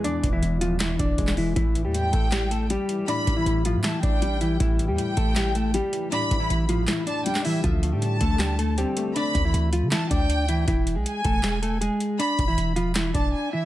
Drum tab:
HH |x-x-x-x-x-x-x-o-|x-x-x-x-x-x-x-x-|x-x-x-x-x-x-x-x-|x-x-x-x-x-x-x-x-|
CP |--------x----x--|--------x-------|--------x-------|--------x-------|
SD |--------o----o--|--------o-------|--------o-------|--------o-------|
BD |--o-------o-o---|o-----o---------|--o-------o-----|o-----o---------|

HH |x-x-x-x-x-x-x-o-|x-x-x-x-x-x-x-x-|x-x-x-x-x-x-x-x-|x-x-x-x-x-x-x-x-|
CP |--------x----x--|--------x-------|--------x-------|--------x-------|
SD |--------o----o--|--------o-------|--------o-------|--------o-------|
BD |--o-------------|o-----o---------|--o-------o-----|o-----o---------|

HH |x-x-x-x-x-x-----|
CP |--------x-------|
SD |--------o-------|
BD |--o-------o-----|